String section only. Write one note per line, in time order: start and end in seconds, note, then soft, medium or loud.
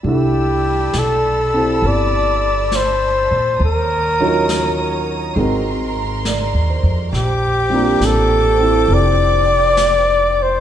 0.03 3.56 D5 medium
0.03 3.56 A5 medium
0.03 3.56 B5 soft
0.03 3.56 E6 medium
3.61 5.35 C#5 medium
3.61 7.10 A#5 medium
3.61 5.35 D#6 medium
5.37 7.12 A#4 medium
5.37 7.11 C6 medium
7.14 10.60 C5 medium
7.14 10.60 G5 medium
7.14 10.60 D6 medium